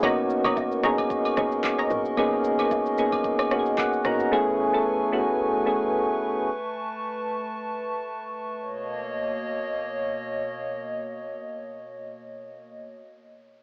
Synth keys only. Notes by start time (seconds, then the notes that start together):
0.04 A#3 B3 C#4 D#4 F#4
0.45 A#3 B3 C#4 D#4 F#4
0.84 A#3 B3 C#4 D#4 G#4
1.37 A#3 B3 C#4 D#4 G#4
2.18 A#3 B3 C#4 D#4 G#4
2.59 A#3 B3 C#4 D#4 G#4
2.98 A#3 B3 C#4 D#4 G#4
3.52 A#3 B3 C#4 D#4 F#4
3.59 G#4
3.79 F#5
4.05 A#3 B3 C#4 D#4 F#4 A#5
4.32 A3 B3 C#4 E4 G#4
4.73 A3 B3 C#4 E4 A4
5.12 A3 B3 C#4 E4 F#4
5.66 A3 B3 C#4 E4 G#4